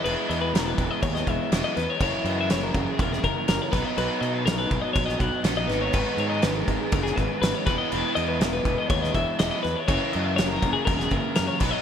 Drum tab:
CC |x-x-x-x-x-x-x-x-|x-x-x-x-x-x-x-x-|x-x-x-x-x-x-x-x-|x-x-x-x-x-x-x-x-|
SD |----o----o--o-o-|----o----o--o-o-|----o----o--o-o-|----o----o--o-o-|
BD |------o-o-o-----|o-----o-o-o---o-|------o-o-o-----|o-----o-o-o---o-|

CC |x-x-x-x-x-x-x-x-|x-x-x-x-x-x-x-x-|
SD |----o----o--o-o-|----o----o--o-o-|
BD |------o-o-o-----|o-----o-o-o---o-|